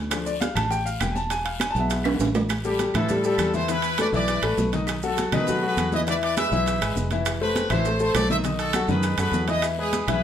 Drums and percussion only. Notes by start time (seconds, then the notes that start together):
0.11 high bongo, high conga, high timbale, long guiro, claves, maracas
0.26 high conga, maracas
0.41 high bongo, high conga, high timbale, short guiro, maracas
0.56 high conga, low conga, high timbale, short guiro, claves, maracas
0.71 high bongo, high conga, long guiro, maracas
0.86 high bongo, high conga, maracas
1.00 high bongo, low bongo, high conga, high timbale, short guiro, claves, maracas
1.16 high bongo, high conga, short guiro, maracas
1.30 high bongo, high conga, high timbale, long guiro, maracas
1.45 high conga, high timbale
1.60 high bongo, high conga, high timbale, short guiro, claves, maracas
1.74 high bongo, high conga, short guiro, maracas
1.89 high bongo, high conga, high timbale, long guiro, maracas
2.04 high bongo, high conga, high timbale, claves
2.14 low bongo
2.20 high conga, high timbale, short guiro, maracas
2.25 low bongo
2.35 low bongo, high conga, low timbale, short guiro, maracas
2.49 high bongo, high conga, high timbale, long guiro, claves, maracas
2.64 high conga, maracas
2.79 high bongo, high conga, high timbale, short guiro, maracas
2.94 high conga, low conga, high timbale, short guiro, claves, maracas
3.09 high bongo, high conga, low conga, long guiro, maracas
3.24 high conga, maracas
3.38 high bongo, low bongo, high conga, high timbale, short guiro, claves, maracas
3.54 high bongo, high conga, short guiro, maracas
3.68 high bongo, high conga, high timbale, long guiro, maracas
3.82 high conga, high timbale, maracas
3.98 high bongo, high conga, high timbale, short guiro, claves, maracas
4.13 high conga, short guiro, maracas
4.28 high bongo, high conga, high timbale, long guiro, maracas
4.42 high bongo, high conga, high timbale, claves
4.57 high bongo, low bongo, high conga, low timbale, short guiro, maracas
4.72 high bongo, high timbale, short guiro, maracas
4.87 high bongo, high conga, high timbale, long guiro, claves, maracas
5.03 high conga, maracas
5.17 high bongo, high conga, high timbale, short guiro, maracas
5.32 high bongo, high conga, low conga, high timbale, short guiro, claves, maracas
5.47 high bongo, high conga, low conga, long guiro, maracas
5.62 high bongo, high conga
5.77 high bongo, low bongo, high conga, high timbale, short guiro, claves, maracas
5.92 high bongo, high conga, short guiro, maracas
6.07 high bongo, high timbale, long guiro, maracas
6.22 high conga, high timbale
6.37 high bongo, high conga, high timbale, short guiro, claves, maracas
6.51 high bongo, high conga, short guiro, maracas
6.66 high bongo, high conga, high timbale, long guiro, maracas
6.80 high bongo, high conga, high timbale, claves, maracas
6.96 high bongo, low bongo, high conga, short guiro, maracas
7.10 high bongo, high conga, high timbale, short guiro, maracas
7.25 high bongo, high conga, high timbale, long guiro, claves, maracas
7.42 high conga
7.55 high bongo, high conga, high timbale, short guiro, maracas
7.70 high conga, low conga, high timbale, short guiro, claves, maracas
7.85 high bongo, high conga, long guiro, maracas
7.99 high bongo, high conga, maracas
8.14 high bongo, low bongo, high conga, high timbale, low timbale, short guiro, claves, maracas
8.29 high bongo, high conga, short guiro, maracas
8.44 high bongo, high conga, high timbale, long guiro, maracas
8.59 high conga, high timbale, maracas
8.73 high bongo, high conga, high timbale, short guiro, claves, maracas
8.88 high conga, short guiro, maracas
9.03 high bongo, high conga, high timbale, long guiro, maracas
9.18 high bongo, high conga, high timbale, claves, maracas
9.33 high bongo, low bongo, high conga, short guiro, maracas
9.47 high bongo, high conga, high timbale, short guiro, maracas
9.62 high bongo, high conga, high timbale, long guiro, claves, maracas
9.78 high conga
9.92 high bongo, high conga, high timbale, short guiro, maracas
10.07 high bongo, high conga, low conga, high timbale, short guiro, claves, maracas